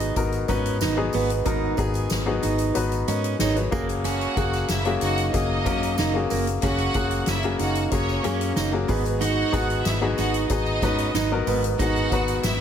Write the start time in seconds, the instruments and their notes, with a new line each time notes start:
Already playing: fingered electric bass G#1, grand piano G#2 B3 D#4 F#4 G#4 B4, steel-string acoustic guitar D#4
0.00 closed hi-hat
0.16 fingered electric bass G#1, grand piano B3 D#4 F#4 A#4, kick, closed hi-hat, tambourine
0.32 closed hi-hat, tambourine
0.48 fingered electric bass G#2, grand piano B3 D#4 F#4 B4, steel-string acoustic guitar C#4, kick, closed hi-hat, tambourine
0.66 closed hi-hat
0.81 fingered electric bass G#1, steel-string acoustic guitar D#4, snare, closed hi-hat, tambourine
0.97 grand piano B3 D#4 F#4 G#4
1.13 fingered electric bass G#1, steel-string acoustic guitar B3, open hi-hat, tambourine
1.30 closed hi-hat, tambourine
1.45 fingered electric bass G#1, grand piano G#2 B3 D#4 F#4 A#4, steel-string acoustic guitar D#4, kick, closed hi-hat, tambourine
1.77 fingered electric bass G#1, grand piano B3 D#4 F#4 G#4, steel-string acoustic guitar G#4, kick, closed hi-hat, tambourine
1.94 closed hi-hat, tambourine
2.10 fingered electric bass G#1, snare, closed hi-hat, tambourine
2.26 grand piano B3 D#4 F#4 G#4
2.43 fingered electric bass G#1, steel-string acoustic guitar D#4, closed hi-hat, tambourine
2.58 closed hi-hat, tambourine
2.74 fingered electric bass G#1, grand piano B3 D#4 F#4 B4, closed hi-hat, tambourine
2.92 closed hi-hat, tambourine
3.08 fingered electric bass G#2, steel-string acoustic guitar C#4, grand piano A#4 D#5, closed hi-hat, tambourine
3.24 closed hi-hat
3.39 fingered electric bass G#1, steel-string acoustic guitar D#4, grand piano G#4 C#5, snare, closed hi-hat, tambourine
3.56 grand piano F#4 B4, closed hi-hat
3.71 fingered electric bass F#1, grand piano A#3 C#4 F#4 G#4, steel-string acoustic guitar A#3, kick, tambourine, crash
3.89 closed hi-hat, tambourine
4.04 steel-string acoustic guitar C#4, violin section F#4 F#5, closed hi-hat, tambourine
4.21 closed hi-hat
4.36 fingered electric bass F#1, grand piano A#3 C#4 F#4 G#4, steel-string acoustic guitar F#4, kick, closed hi-hat, tambourine
4.53 snare, closed hi-hat, tambourine
4.68 fingered electric bass F#1, violin section E4 E5, snare, closed hi-hat, tambourine
4.85 grand piano A#3 C#4 F#4 G#4, closed hi-hat
5.01 fingered electric bass F#1, steel-string acoustic guitar D#4, violin section F#4 F#5, closed hi-hat, tambourine
5.18 closed hi-hat, tambourine
5.32 fingered electric bass F#1, grand piano A#3 C#4 F#4 G#4, violin section D#4 D#5, kick, closed hi-hat, tambourine
5.65 fingered electric bass F#2, grand piano A#3 C#4 F#4 A#4, steel-string acoustic guitar C#4, kick, closed hi-hat, tambourine
5.83 closed hi-hat
5.98 fingered electric bass F#1, steel-string acoustic guitar D#4, snare, closed hi-hat, tambourine
6.14 grand piano A#3 C#4 F#4 G#4
6.30 fingered electric bass F#1, steel-string acoustic guitar A#3, open hi-hat, tambourine
6.47 closed hi-hat, tambourine
6.62 fingered electric bass F#1, grand piano A#3 C#4 F#4 G#4, steel-string acoustic guitar C#4, violin section F#4 F#5, kick, closed hi-hat, tambourine
6.78 closed hi-hat
6.94 fingered electric bass F#1, grand piano A#3 C#4 F#4 G#4, steel-string acoustic guitar F#4, kick, closed hi-hat, tambourine
7.11 closed hi-hat
7.26 fingered electric bass F#1, violin section E4 E5, snare, closed hi-hat, tambourine
7.43 grand piano A#3 C#4 F#4 G#4, closed hi-hat
7.59 fingered electric bass F#1, steel-string acoustic guitar D#4, violin section F#4 F#5, closed hi-hat, tambourine
7.75 closed hi-hat, tambourine
7.91 fingered electric bass F#1, grand piano A#3 C#4 F#4 G#4, violin section C#4 C#5, kick, closed hi-hat, tambourine
8.09 tambourine
8.23 fingered electric bass F#2, grand piano A#3 C#4 F#4 G#4, steel-string acoustic guitar C#4, closed hi-hat, tambourine
8.41 closed hi-hat
8.56 fingered electric bass F#1, steel-string acoustic guitar D#4, snare, closed hi-hat, tambourine
8.72 grand piano A#3 C#4 F#4 G#4
8.88 fingered electric bass G#1, grand piano G#2 B3 D#4 F#4 G#4, steel-string acoustic guitar B3, kick, open hi-hat, tambourine
9.05 closed hi-hat, tambourine
9.20 steel-string acoustic guitar D#4, violin section F#4 F#5, closed hi-hat, tambourine
9.52 fingered electric bass G#1, grand piano B3 D#4 F#4 G#4, steel-string acoustic guitar F#4, kick, closed hi-hat, tambourine
9.70 closed hi-hat
9.83 fingered electric bass G#1, violin section E4 E5, snare, closed hi-hat, tambourine
10.01 grand piano B3 D#4 F#4 G#4
10.17 fingered electric bass G#1, steel-string acoustic guitar D#4, violin section F#4 F#5, closed hi-hat, tambourine
10.34 closed hi-hat
10.49 fingered electric bass G#1, grand piano B3 D#4 F#4 G#4, violin section D#4 D#5, kick, closed hi-hat, tambourine
10.66 tambourine
10.82 fingered electric bass G#2, grand piano B3 D#4 F#4 B4, steel-string acoustic guitar C#4, kick, closed hi-hat, tambourine
10.98 closed hi-hat
11.14 fingered electric bass G#1, steel-string acoustic guitar D#4, snare, closed hi-hat, tambourine
11.31 grand piano B3 D#4 F#4 A#4
11.47 fingered electric bass G#1, grand piano G#2, steel-string acoustic guitar B3, open hi-hat, tambourine
11.64 closed hi-hat
11.79 fingered electric bass G#1, grand piano B3 D#4 F#4 G#4, steel-string acoustic guitar D#4, violin section F#4 F#5, kick, closed hi-hat, tambourine
11.96 closed hi-hat
12.12 fingered electric bass G#1, grand piano B3 D#4 F#4 B4, steel-string acoustic guitar F#4, kick, closed hi-hat, tambourine
12.28 closed hi-hat, tambourine
12.43 fingered electric bass G#1, violin section E4 E5, snare, closed hi-hat, tambourine